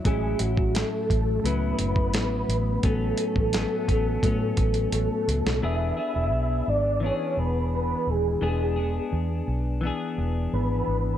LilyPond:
<<
  \new Staff \with { instrumentName = "Soft synth lead" } { \time 4/4 \key e \mixolydian \tempo 4 = 86 gis'8 fis'8 a'4 b'2 | a'2. a'4 | e''4. d''8 cis''8 b'8 b'8 gis'8 | gis'4 r2 b'4 | }
  \new Staff \with { instrumentName = "Clean electric guitar" } { \time 4/4 \key e \mixolydian <a, fis cis' e'>2 <a, fis cis' e'>2 | <a, fis b cis'>4 <a, fis b cis'>8 <fis b cis'>8 <a, fis b cis'>2 | <e b d' gis'>8 <b d' gis'>4. <e b d' gis'>2 | <e b d' gis'>8 <b d' gis'>4. <e b d' gis'>2 | }
  \new Staff \with { instrumentName = "Fingered electric bass" } { \clef bass \time 4/4 \key e \mixolydian a,,8 a,,8. r16 a,,8 cis,8 fis,,8 a,,8 a,,8 | a,,8 r16 a,,8 r16 a,,8 a,8 a,,8 a,,16 r16 cis,16 b,,16 | e,,8 r16 e,,16 b,,8 gis,,8. r16 e,,4 dis,,8 | e,,4 e,8 b,,8. r16 e,,8 gis,,8 gis,,8 | }
  \new DrumStaff \with { instrumentName = "Drums" } \drummode { \time 4/4 <hh bd>8 hh16 bd16 <hh sn>8 <hh bd>8 hh8 hh16 bd16 <hh sn>8 hh8 | <hh bd>8 hh16 bd16 <hh sn>8 <hh bd>8 <hh bd>8 <hh bd>16 hh16 hh8 hh16 sn16 | r4 r4 r4 r4 | r4 r4 r4 r4 | }
>>